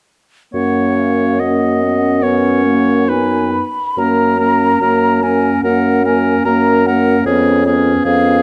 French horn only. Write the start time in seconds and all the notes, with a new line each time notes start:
0.54 A#3
1.40 C#4
2.22 B3
2.65 A#3
3.09 B3
3.98 A#3
4.39 A#3
4.82 A#3
5.23 A#3
5.64 A#3
6.06 A#3
6.46 A#3
6.87 A#3
7.28 B3
7.67 B3
8.06 B3